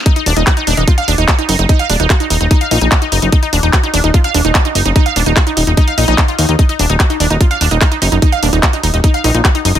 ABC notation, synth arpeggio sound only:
X:1
M:4/4
L:1/16
Q:1/4=147
K:Ebm
V:1 name="Synth arpeggio sound"
E E =D E G E D E F f D E G E E E | E f =D E G E E E E f E E G E E E | E E =D E G E D E F f D E G E E E | E f =D E G E E E E f E E E F E E |
E E =D E G E D E F f D E E E E E | E f =D E G E E E E f E E G E E E |]